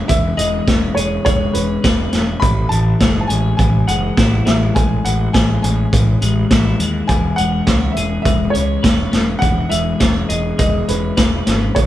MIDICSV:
0, 0, Header, 1, 5, 480
1, 0, Start_track
1, 0, Key_signature, 4, "major"
1, 0, Tempo, 583090
1, 77, Time_signature, 4, 2, 24, 8
1, 9766, End_track
2, 0, Start_track
2, 0, Title_t, "Upright piano"
2, 0, Program_c, 0, 0
2, 68, Note_on_c, 0, 76, 98
2, 307, Note_on_c, 0, 75, 101
2, 320, Note_off_c, 0, 76, 0
2, 759, Note_off_c, 0, 75, 0
2, 779, Note_on_c, 0, 73, 71
2, 1015, Note_off_c, 0, 73, 0
2, 1028, Note_on_c, 0, 73, 83
2, 1262, Note_on_c, 0, 71, 75
2, 1279, Note_off_c, 0, 73, 0
2, 1716, Note_off_c, 0, 71, 0
2, 1973, Note_on_c, 0, 83, 98
2, 2207, Note_off_c, 0, 83, 0
2, 2215, Note_on_c, 0, 81, 90
2, 2618, Note_off_c, 0, 81, 0
2, 2641, Note_on_c, 0, 81, 58
2, 2695, Note_on_c, 0, 80, 86
2, 2707, Note_off_c, 0, 81, 0
2, 2926, Note_off_c, 0, 80, 0
2, 2938, Note_on_c, 0, 80, 88
2, 3190, Note_on_c, 0, 78, 87
2, 3195, Note_off_c, 0, 80, 0
2, 3673, Note_on_c, 0, 76, 81
2, 3688, Note_off_c, 0, 78, 0
2, 3910, Note_on_c, 0, 80, 87
2, 3922, Note_off_c, 0, 76, 0
2, 4154, Note_on_c, 0, 78, 77
2, 4160, Note_off_c, 0, 80, 0
2, 4390, Note_on_c, 0, 80, 85
2, 4402, Note_off_c, 0, 78, 0
2, 4616, Note_off_c, 0, 80, 0
2, 4629, Note_on_c, 0, 80, 80
2, 5560, Note_off_c, 0, 80, 0
2, 5824, Note_on_c, 0, 80, 98
2, 6060, Note_on_c, 0, 78, 99
2, 6078, Note_off_c, 0, 80, 0
2, 6516, Note_off_c, 0, 78, 0
2, 6516, Note_on_c, 0, 76, 73
2, 6755, Note_off_c, 0, 76, 0
2, 6767, Note_on_c, 0, 76, 84
2, 7000, Note_on_c, 0, 73, 74
2, 7004, Note_off_c, 0, 76, 0
2, 7466, Note_off_c, 0, 73, 0
2, 7728, Note_on_c, 0, 78, 99
2, 7981, Note_on_c, 0, 76, 92
2, 7991, Note_off_c, 0, 78, 0
2, 8466, Note_on_c, 0, 75, 73
2, 8485, Note_off_c, 0, 76, 0
2, 8703, Note_off_c, 0, 75, 0
2, 8716, Note_on_c, 0, 75, 92
2, 8941, Note_off_c, 0, 75, 0
2, 8961, Note_on_c, 0, 71, 69
2, 9408, Note_off_c, 0, 71, 0
2, 9671, Note_on_c, 0, 73, 70
2, 9766, Note_off_c, 0, 73, 0
2, 9766, End_track
3, 0, Start_track
3, 0, Title_t, "Clean electric guitar"
3, 0, Program_c, 1, 27
3, 0, Note_on_c, 1, 56, 70
3, 0, Note_on_c, 1, 61, 62
3, 0, Note_on_c, 1, 68, 68
3, 0, Note_on_c, 1, 71, 62
3, 66, Note_on_c, 1, 52, 65
3, 304, Note_off_c, 1, 56, 0
3, 308, Note_on_c, 1, 56, 66
3, 552, Note_off_c, 1, 61, 0
3, 555, Note_on_c, 1, 61, 66
3, 793, Note_off_c, 1, 68, 0
3, 794, Note_off_c, 1, 71, 0
3, 796, Note_on_c, 1, 68, 67
3, 1028, Note_off_c, 1, 56, 0
3, 1031, Note_on_c, 1, 56, 68
3, 1267, Note_off_c, 1, 61, 0
3, 1270, Note_on_c, 1, 61, 64
3, 1514, Note_on_c, 1, 71, 71
3, 1750, Note_off_c, 1, 61, 0
3, 1753, Note_on_c, 1, 61, 61
3, 1995, Note_off_c, 1, 71, 0
3, 1996, Note_on_c, 1, 45, 66
3, 2021, Note_off_c, 1, 56, 0
3, 2021, Note_off_c, 1, 68, 0
3, 2233, Note_off_c, 1, 52, 0
3, 2237, Note_on_c, 1, 52, 61
3, 2478, Note_on_c, 1, 56, 65
3, 2709, Note_off_c, 1, 61, 0
3, 2712, Note_on_c, 1, 61, 65
3, 2948, Note_off_c, 1, 52, 0
3, 2952, Note_on_c, 1, 52, 59
3, 3189, Note_off_c, 1, 56, 0
3, 3192, Note_on_c, 1, 56, 63
3, 3196, Note_off_c, 1, 45, 0
3, 3434, Note_on_c, 1, 64, 70
3, 3665, Note_off_c, 1, 56, 0
3, 3668, Note_on_c, 1, 56, 60
3, 3915, Note_on_c, 1, 45, 73
3, 4155, Note_off_c, 1, 52, 0
3, 4158, Note_on_c, 1, 52, 59
3, 4395, Note_off_c, 1, 56, 0
3, 4398, Note_on_c, 1, 56, 66
3, 4630, Note_off_c, 1, 61, 0
3, 4633, Note_on_c, 1, 61, 60
3, 4877, Note_off_c, 1, 52, 0
3, 4880, Note_on_c, 1, 52, 59
3, 5116, Note_off_c, 1, 45, 0
3, 5118, Note_off_c, 1, 56, 0
3, 5121, Note_on_c, 1, 56, 66
3, 5356, Note_off_c, 1, 64, 0
3, 5359, Note_on_c, 1, 64, 62
3, 5596, Note_off_c, 1, 56, 0
3, 5600, Note_on_c, 1, 56, 64
3, 5836, Note_off_c, 1, 52, 0
3, 5840, Note_on_c, 1, 52, 70
3, 6079, Note_off_c, 1, 56, 0
3, 6082, Note_on_c, 1, 56, 55
3, 6313, Note_off_c, 1, 61, 0
3, 6316, Note_on_c, 1, 61, 65
3, 6558, Note_off_c, 1, 64, 0
3, 6561, Note_on_c, 1, 68, 66
3, 6795, Note_off_c, 1, 56, 0
3, 6798, Note_on_c, 1, 56, 65
3, 7025, Note_off_c, 1, 61, 0
3, 7028, Note_on_c, 1, 61, 64
3, 7268, Note_on_c, 1, 71, 70
3, 7503, Note_off_c, 1, 61, 0
3, 7506, Note_on_c, 1, 61, 56
3, 7745, Note_off_c, 1, 52, 0
3, 7749, Note_on_c, 1, 52, 67
3, 7983, Note_off_c, 1, 56, 0
3, 7987, Note_on_c, 1, 56, 65
3, 8229, Note_off_c, 1, 61, 0
3, 8232, Note_on_c, 1, 61, 66
3, 8467, Note_off_c, 1, 68, 0
3, 8471, Note_on_c, 1, 68, 64
3, 8475, Note_off_c, 1, 71, 0
3, 8699, Note_off_c, 1, 56, 0
3, 8709, Note_on_c, 1, 56, 64
3, 8949, Note_off_c, 1, 61, 0
3, 8959, Note_on_c, 1, 61, 61
3, 9198, Note_on_c, 1, 71, 66
3, 9430, Note_off_c, 1, 61, 0
3, 9440, Note_on_c, 1, 61, 66
3, 9676, Note_off_c, 1, 56, 0
3, 9677, Note_off_c, 1, 68, 0
3, 9680, Note_off_c, 1, 71, 0
3, 9681, Note_off_c, 1, 61, 0
3, 9684, Note_on_c, 1, 45, 69
3, 9766, Note_off_c, 1, 45, 0
3, 9766, Note_off_c, 1, 52, 0
3, 9766, End_track
4, 0, Start_track
4, 0, Title_t, "Picked electric bass"
4, 0, Program_c, 2, 34
4, 77, Note_on_c, 2, 28, 85
4, 254, Note_off_c, 2, 28, 0
4, 317, Note_on_c, 2, 28, 76
4, 494, Note_off_c, 2, 28, 0
4, 560, Note_on_c, 2, 28, 87
4, 736, Note_off_c, 2, 28, 0
4, 795, Note_on_c, 2, 28, 83
4, 972, Note_off_c, 2, 28, 0
4, 1036, Note_on_c, 2, 28, 79
4, 1213, Note_off_c, 2, 28, 0
4, 1279, Note_on_c, 2, 28, 78
4, 1455, Note_off_c, 2, 28, 0
4, 1516, Note_on_c, 2, 28, 83
4, 1693, Note_off_c, 2, 28, 0
4, 1752, Note_on_c, 2, 28, 76
4, 1931, Note_off_c, 2, 28, 0
4, 1999, Note_on_c, 2, 33, 80
4, 2175, Note_off_c, 2, 33, 0
4, 2228, Note_on_c, 2, 33, 82
4, 2408, Note_off_c, 2, 33, 0
4, 2475, Note_on_c, 2, 30, 79
4, 2652, Note_off_c, 2, 30, 0
4, 2718, Note_on_c, 2, 33, 83
4, 2895, Note_off_c, 2, 33, 0
4, 2956, Note_on_c, 2, 33, 82
4, 3133, Note_off_c, 2, 33, 0
4, 3198, Note_on_c, 2, 30, 82
4, 3375, Note_off_c, 2, 30, 0
4, 3438, Note_on_c, 2, 33, 82
4, 3615, Note_off_c, 2, 33, 0
4, 3681, Note_on_c, 2, 33, 75
4, 3856, Note_off_c, 2, 33, 0
4, 3920, Note_on_c, 2, 33, 87
4, 4095, Note_off_c, 2, 33, 0
4, 4161, Note_on_c, 2, 33, 77
4, 4336, Note_off_c, 2, 33, 0
4, 4401, Note_on_c, 2, 33, 80
4, 4576, Note_off_c, 2, 33, 0
4, 4643, Note_on_c, 2, 33, 79
4, 4818, Note_off_c, 2, 33, 0
4, 4885, Note_on_c, 2, 33, 88
4, 5059, Note_off_c, 2, 33, 0
4, 5118, Note_on_c, 2, 33, 84
4, 5295, Note_off_c, 2, 33, 0
4, 5362, Note_on_c, 2, 33, 77
4, 5537, Note_off_c, 2, 33, 0
4, 5595, Note_on_c, 2, 39, 80
4, 5773, Note_off_c, 2, 39, 0
4, 5839, Note_on_c, 2, 28, 89
4, 6015, Note_off_c, 2, 28, 0
4, 6085, Note_on_c, 2, 28, 90
4, 6259, Note_off_c, 2, 28, 0
4, 6318, Note_on_c, 2, 37, 78
4, 6495, Note_off_c, 2, 37, 0
4, 6553, Note_on_c, 2, 28, 83
4, 6732, Note_off_c, 2, 28, 0
4, 6800, Note_on_c, 2, 28, 90
4, 6976, Note_off_c, 2, 28, 0
4, 7041, Note_on_c, 2, 37, 82
4, 7217, Note_off_c, 2, 37, 0
4, 7275, Note_on_c, 2, 28, 85
4, 7453, Note_off_c, 2, 28, 0
4, 7517, Note_on_c, 2, 28, 84
4, 7695, Note_off_c, 2, 28, 0
4, 7759, Note_on_c, 2, 28, 78
4, 7936, Note_off_c, 2, 28, 0
4, 8000, Note_on_c, 2, 28, 82
4, 8177, Note_off_c, 2, 28, 0
4, 8239, Note_on_c, 2, 28, 82
4, 8416, Note_off_c, 2, 28, 0
4, 8480, Note_on_c, 2, 28, 84
4, 8657, Note_off_c, 2, 28, 0
4, 8720, Note_on_c, 2, 28, 90
4, 8897, Note_off_c, 2, 28, 0
4, 8966, Note_on_c, 2, 28, 82
4, 9141, Note_off_c, 2, 28, 0
4, 9201, Note_on_c, 2, 28, 87
4, 9378, Note_off_c, 2, 28, 0
4, 9445, Note_on_c, 2, 32, 92
4, 9621, Note_off_c, 2, 32, 0
4, 9681, Note_on_c, 2, 33, 87
4, 9766, Note_off_c, 2, 33, 0
4, 9766, End_track
5, 0, Start_track
5, 0, Title_t, "Drums"
5, 75, Note_on_c, 9, 42, 81
5, 77, Note_on_c, 9, 36, 96
5, 157, Note_off_c, 9, 42, 0
5, 159, Note_off_c, 9, 36, 0
5, 319, Note_on_c, 9, 42, 68
5, 401, Note_off_c, 9, 42, 0
5, 556, Note_on_c, 9, 36, 95
5, 557, Note_on_c, 9, 38, 91
5, 557, Note_on_c, 9, 42, 65
5, 639, Note_off_c, 9, 36, 0
5, 640, Note_off_c, 9, 38, 0
5, 640, Note_off_c, 9, 42, 0
5, 800, Note_on_c, 9, 42, 66
5, 883, Note_off_c, 9, 42, 0
5, 1036, Note_on_c, 9, 42, 85
5, 1037, Note_on_c, 9, 36, 101
5, 1118, Note_off_c, 9, 42, 0
5, 1119, Note_off_c, 9, 36, 0
5, 1273, Note_on_c, 9, 42, 58
5, 1355, Note_off_c, 9, 42, 0
5, 1516, Note_on_c, 9, 36, 105
5, 1516, Note_on_c, 9, 38, 113
5, 1516, Note_on_c, 9, 42, 80
5, 1598, Note_off_c, 9, 36, 0
5, 1598, Note_off_c, 9, 38, 0
5, 1598, Note_off_c, 9, 42, 0
5, 1751, Note_on_c, 9, 38, 71
5, 1751, Note_on_c, 9, 42, 61
5, 1833, Note_off_c, 9, 38, 0
5, 1833, Note_off_c, 9, 42, 0
5, 1995, Note_on_c, 9, 36, 103
5, 1996, Note_on_c, 9, 42, 66
5, 2077, Note_off_c, 9, 36, 0
5, 2078, Note_off_c, 9, 42, 0
5, 2235, Note_on_c, 9, 42, 51
5, 2317, Note_off_c, 9, 42, 0
5, 2473, Note_on_c, 9, 38, 90
5, 2473, Note_on_c, 9, 42, 69
5, 2474, Note_on_c, 9, 36, 88
5, 2556, Note_off_c, 9, 38, 0
5, 2556, Note_off_c, 9, 42, 0
5, 2557, Note_off_c, 9, 36, 0
5, 2716, Note_on_c, 9, 42, 58
5, 2799, Note_off_c, 9, 42, 0
5, 2955, Note_on_c, 9, 36, 103
5, 2956, Note_on_c, 9, 42, 65
5, 3037, Note_off_c, 9, 36, 0
5, 3039, Note_off_c, 9, 42, 0
5, 3196, Note_on_c, 9, 42, 52
5, 3279, Note_off_c, 9, 42, 0
5, 3436, Note_on_c, 9, 36, 101
5, 3438, Note_on_c, 9, 38, 108
5, 3438, Note_on_c, 9, 42, 82
5, 3519, Note_off_c, 9, 36, 0
5, 3520, Note_off_c, 9, 38, 0
5, 3520, Note_off_c, 9, 42, 0
5, 3677, Note_on_c, 9, 38, 86
5, 3677, Note_on_c, 9, 42, 57
5, 3759, Note_off_c, 9, 38, 0
5, 3759, Note_off_c, 9, 42, 0
5, 3918, Note_on_c, 9, 36, 91
5, 3921, Note_on_c, 9, 42, 71
5, 4001, Note_off_c, 9, 36, 0
5, 4003, Note_off_c, 9, 42, 0
5, 4160, Note_on_c, 9, 42, 58
5, 4242, Note_off_c, 9, 42, 0
5, 4399, Note_on_c, 9, 36, 93
5, 4400, Note_on_c, 9, 38, 96
5, 4400, Note_on_c, 9, 42, 72
5, 4482, Note_off_c, 9, 36, 0
5, 4483, Note_off_c, 9, 38, 0
5, 4483, Note_off_c, 9, 42, 0
5, 4642, Note_on_c, 9, 42, 65
5, 4724, Note_off_c, 9, 42, 0
5, 4881, Note_on_c, 9, 36, 103
5, 4885, Note_on_c, 9, 42, 80
5, 4963, Note_off_c, 9, 36, 0
5, 4967, Note_off_c, 9, 42, 0
5, 5119, Note_on_c, 9, 42, 58
5, 5201, Note_off_c, 9, 42, 0
5, 5356, Note_on_c, 9, 38, 108
5, 5356, Note_on_c, 9, 42, 85
5, 5358, Note_on_c, 9, 36, 111
5, 5439, Note_off_c, 9, 38, 0
5, 5439, Note_off_c, 9, 42, 0
5, 5440, Note_off_c, 9, 36, 0
5, 5596, Note_on_c, 9, 42, 62
5, 5678, Note_off_c, 9, 42, 0
5, 5835, Note_on_c, 9, 42, 69
5, 5837, Note_on_c, 9, 36, 96
5, 5917, Note_off_c, 9, 42, 0
5, 5919, Note_off_c, 9, 36, 0
5, 6074, Note_on_c, 9, 42, 54
5, 6157, Note_off_c, 9, 42, 0
5, 6312, Note_on_c, 9, 38, 96
5, 6312, Note_on_c, 9, 42, 70
5, 6315, Note_on_c, 9, 36, 92
5, 6395, Note_off_c, 9, 38, 0
5, 6395, Note_off_c, 9, 42, 0
5, 6398, Note_off_c, 9, 36, 0
5, 6557, Note_on_c, 9, 42, 56
5, 6640, Note_off_c, 9, 42, 0
5, 6794, Note_on_c, 9, 42, 74
5, 6795, Note_on_c, 9, 36, 104
5, 6876, Note_off_c, 9, 42, 0
5, 6877, Note_off_c, 9, 36, 0
5, 7036, Note_on_c, 9, 42, 53
5, 7118, Note_off_c, 9, 42, 0
5, 7277, Note_on_c, 9, 36, 109
5, 7279, Note_on_c, 9, 38, 105
5, 7279, Note_on_c, 9, 42, 81
5, 7359, Note_off_c, 9, 36, 0
5, 7361, Note_off_c, 9, 38, 0
5, 7361, Note_off_c, 9, 42, 0
5, 7515, Note_on_c, 9, 38, 71
5, 7515, Note_on_c, 9, 42, 59
5, 7597, Note_off_c, 9, 38, 0
5, 7597, Note_off_c, 9, 42, 0
5, 7753, Note_on_c, 9, 42, 69
5, 7755, Note_on_c, 9, 36, 87
5, 7835, Note_off_c, 9, 42, 0
5, 7838, Note_off_c, 9, 36, 0
5, 7996, Note_on_c, 9, 42, 64
5, 8078, Note_off_c, 9, 42, 0
5, 8234, Note_on_c, 9, 38, 90
5, 8234, Note_on_c, 9, 42, 80
5, 8237, Note_on_c, 9, 36, 91
5, 8316, Note_off_c, 9, 38, 0
5, 8316, Note_off_c, 9, 42, 0
5, 8320, Note_off_c, 9, 36, 0
5, 8476, Note_on_c, 9, 42, 69
5, 8558, Note_off_c, 9, 42, 0
5, 8715, Note_on_c, 9, 42, 79
5, 8719, Note_on_c, 9, 36, 101
5, 8798, Note_off_c, 9, 42, 0
5, 8801, Note_off_c, 9, 36, 0
5, 8960, Note_on_c, 9, 42, 55
5, 9043, Note_off_c, 9, 42, 0
5, 9196, Note_on_c, 9, 38, 99
5, 9196, Note_on_c, 9, 42, 84
5, 9200, Note_on_c, 9, 36, 112
5, 9279, Note_off_c, 9, 38, 0
5, 9279, Note_off_c, 9, 42, 0
5, 9282, Note_off_c, 9, 36, 0
5, 9440, Note_on_c, 9, 38, 77
5, 9440, Note_on_c, 9, 42, 67
5, 9523, Note_off_c, 9, 38, 0
5, 9523, Note_off_c, 9, 42, 0
5, 9679, Note_on_c, 9, 42, 76
5, 9682, Note_on_c, 9, 36, 89
5, 9762, Note_off_c, 9, 42, 0
5, 9764, Note_off_c, 9, 36, 0
5, 9766, End_track
0, 0, End_of_file